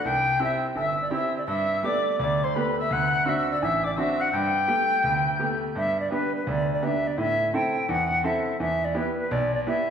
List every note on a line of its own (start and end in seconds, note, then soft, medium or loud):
0.05 0.39 C2 medium
0.05 0.42 G5 medium
0.05 0.42 G6 medium
0.40 0.69 C4 soft
0.40 0.69 E4 soft
0.40 0.69 G4 soft
0.40 0.63 E6 medium
0.44 0.63 E5 medium
0.76 1.10 G1 medium
0.76 0.98 E5 medium
0.76 1.10 E6 medium
1.01 1.12 D5 medium
1.10 1.40 C4 soft
1.10 1.40 E4 soft
1.10 1.40 G4 medium
1.10 1.34 E6 medium
1.15 1.35 E5 medium
1.38 1.43 D5 medium
1.47 1.82 G2 medium
1.47 1.87 E5 medium
1.47 1.80 E6 medium
1.83 2.12 A3 soft
1.83 2.12 B3 soft
1.83 2.12 G4 soft
1.83 2.20 D5 medium
1.83 2.16 D6 medium
2.19 2.54 D2 medium
2.19 2.45 D5 loud
2.19 2.45 D6 medium
2.43 2.59 C5 medium
2.43 2.56 C6 medium
2.54 2.83 A3 soft
2.54 2.84 B3 soft
2.54 2.84 G4 medium
2.54 2.79 B4 medium
2.54 2.77 B5 medium
2.79 2.93 E5 medium
2.79 2.94 E6 medium
2.91 3.25 D2 medium
2.91 3.30 F#5 loud
2.91 3.27 F#6 medium
3.25 3.54 C4 soft
3.25 3.54 D4 soft
3.25 3.55 F#4 soft
3.25 3.53 E5 medium
3.25 3.37 E6 medium
3.38 3.49 E6 medium
3.51 3.66 D5 medium
3.51 3.62 E6 medium
3.62 3.96 A1 medium
3.62 3.85 E5 medium
3.62 3.85 E6 medium
3.84 3.91 D5 medium
3.84 3.98 D6 medium
3.96 4.26 C4 soft
3.96 4.26 D4 soft
3.96 4.26 F#4 soft
3.96 4.22 E5 medium
3.96 4.21 E6 medium
4.20 4.36 F#5 medium
4.20 4.31 F#6 medium
4.32 4.67 G2 medium
4.32 5.45 G5 loud
4.32 5.58 G6 medium
4.67 4.96 A3 soft
4.67 4.96 B3 soft
4.67 4.97 G4 medium
5.04 5.38 D2 medium
5.39 5.68 A3 soft
5.39 5.68 B3 soft
5.39 5.68 G4 medium
5.75 6.10 G2 medium
5.75 5.97 E5 medium
6.00 6.11 D5 medium
6.11 6.39 B3 soft
6.11 6.40 D4 soft
6.11 6.40 G4 medium
6.11 6.32 B4 medium
6.35 6.50 B4 medium
6.47 6.81 D2 medium
6.47 6.70 D5 medium
6.73 6.86 D5 medium
6.82 7.11 B3 soft
6.82 7.11 D4 soft
6.82 7.11 G4 soft
6.82 7.08 E5 medium
7.07 7.19 D5 medium
7.18 7.52 A2 medium
7.18 7.56 E5 loud
7.54 7.82 C4 soft
7.54 7.82 E4 soft
7.54 7.83 A4 soft
7.54 7.91 G5 medium
7.89 8.23 E2 medium
7.89 8.27 F#5 loud
8.24 8.53 C4 soft
8.24 8.53 E4 soft
8.24 8.53 A4 medium
8.24 8.60 E5 medium
8.60 8.94 E2 medium
8.60 8.86 E5 medium
8.84 8.98 D5 medium
8.94 9.23 B3 soft
8.94 9.23 E4 soft
8.94 9.24 G4 medium
8.94 9.18 B4 medium
9.18 9.33 B4 medium
9.31 9.66 B1 medium
9.31 9.53 D5 medium
9.54 9.60 D5 medium
9.67 9.90 B3 soft
9.67 9.90 E4 soft
9.67 9.90 G4 medium
9.67 9.90 E5 medium